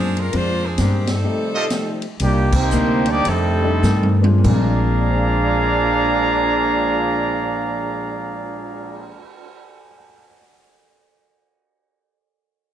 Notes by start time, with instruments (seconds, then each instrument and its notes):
Already playing: upright bass F#2, steel-string acoustic guitar A#2 G#3 C4 D4, saxophone section F3 C4 D4 G#4
0.17 saxophone section G#3 D4 F4 A#4, ride
0.32 upright bass F2, steel-string acoustic guitar A#2 G#3 C4 D4, grand piano G#3 A#3 C4 D4 F4, saxophone section G#3 F4 C5, ride
0.37 saxophone section D4
0.65 saxophone section F3 C4 D4 G#4
0.78 upright bass G2, steel-string acoustic guitar A#2 G#3 C4 D4, saxophone section D#3 G#3 C4 G4, trumpet section D4 G#4 A#4 C5, snare, hi-hat pedal, ride
1.07 trombone section C3 D#3 A3, snare, ride
1.12 saxophone section G3 C4 D#4 A4
1.23 steel-string acoustic guitar F3 A3 D#4 G4, grand piano G3 A3 C4 D#4 G4
1.55 trumpet section F4 G4 A4 D#5
1.70 steel-string acoustic guitar F3 A3 D#4 G4, snare, hi-hat pedal, ride
2.02 ride
2.19 upright bass C2, trombone section A#2 D#3 G3, steel-string acoustic guitar C3 D#3 A#3 D4, trumpet section A#3 D4 G4, ride
2.52 trombone section D#3 G3 C4, trumpet section A#3 D#4 G4 C5, kick, crash
2.71 upright bass D2, steel-string acoustic guitar C3 D#3 A#3 D4, hi-hat pedal
3.06 trombone section G3 A#3 D4, trumpet section D5, ride
3.10 trumpet section A#3 D#4 G4
3.24 steel-string acoustic guitar F2 D#3 A3 D4, upright bass F2, trombone section C3 D#3 A3, trumpet section C4 D#4, ride
3.28 trumpet section G3 A4
3.62 grand piano G3 A3 C4 D4 D#4
3.82 steel-string acoustic guitar F2 D#3 A3 D4, upright bass G2, snare, hi-hat pedal
4.03 high tom
4.22 grand piano G#3 A#3 C4 D4 F4, high tom
4.38 steel-string acoustic guitar A#2
4.44 upright bass A#1, grand piano A#2 A#3 C4 D4 G#4, trombone section A#2 F3 G#3 D4, steel-string acoustic guitar G#3, trumpet section G#4 D5 F5 A#5, kick, crash
4.53 steel-string acoustic guitar C4
4.61 steel-string acoustic guitar D4
4.86 cymbal swell
5.10 grand piano C5
5.17 grand piano F5
5.26 grand piano G#5
5.35 grand piano C6
5.45 grand piano F6
5.56 grand piano G#6
5.68 grand piano C7